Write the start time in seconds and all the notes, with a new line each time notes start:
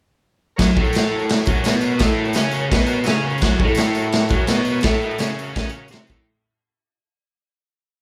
0.56 F#2 F#3 F#4 A#4 C#5, kick, snare, tambourine, crash
0.76 A2 A3, kick
0.80 F#4 A#4 C#5
0.84 tambourine
0.93 F#4 A#4 C#5, snare, tambourine, crash
1.14 F#4 A#4 C#5
1.19 tambourine
1.29 F#4 A#4 C#5, snare, crash
1.37 tambourine
1.45 F#2 F#3 F#4 A#4 C#5, kick, tambourine
1.55 tambourine
1.62 B2 F#4 A#4 C#5, snare, tambourine, crash
1.66 B3
1.81 F#4 A#4 C#5, tambourine
1.97 A2 F#4 A#4 D#5, kick, snare, tambourine, crash
2.01 A3
2.18 F#4 A#4 C#5
2.25 tambourine
2.33 C#3 C#4 F#4 A#4 C#5, snare, tambourine, crash
2.51 F#4 A#4 C#5, tambourine
2.60 tambourine
2.67 B2 F#4 A#4 C#5
2.72 B3, kick, snare, crash
2.79 tambourine
2.85 F#4 A#4 C#5, tambourine
2.96 tambourine
3.02 C#3 C#4 F#4 A#4 E5, tambourine
3.06 snare, crash
3.23 F#4 A#4 C#5
3.30 tambourine
3.38 F#2 F#3 F#4 A#4, tambourine, crash
3.42 C#5, kick, snare
3.58 A2 A3 F#4 A#4 C#5, kick
3.67 tambourine
3.75 F#4 A#4 C#5, snare, tambourine, crash
3.94 F#4 A#4 C#5, tambourine
4.04 tambourine
4.12 F#4 A#4 C#5, snare, crash
4.29 F#2 F#3, kick, tambourine
4.33 F#4 A#4 C#5
4.38 tambourine
4.47 B2 B3 F#4 A#4 C#5, snare, tambourine, crash
4.65 F#4 A#4 C#5, tambourine
4.75 tambourine
4.81 A2 A3, kick, snare, tambourine, crash
4.88 F#4 A#4 C#5
4.92 tambourine
5.02 F#4 A#4 D#5, tambourine
5.11 tambourine
5.18 C#3 C#4 F#4, snare, tambourine, crash
5.23 A#4 C#5
5.39 F#4 A#4 E5, tambourine
5.48 tambourine
5.53 C#3 C#4, kick, snare, tambourine, crash
5.60 F#4 A#4 C#5, tambourine
5.69 tambourine
5.76 F#4 A#4 C#5
5.88 C3 C4, tambourine
5.92 F#4 A#4 C#5, snare, crash
6.07 A2 A3 F#4 A#4 C#5, kick, tambourine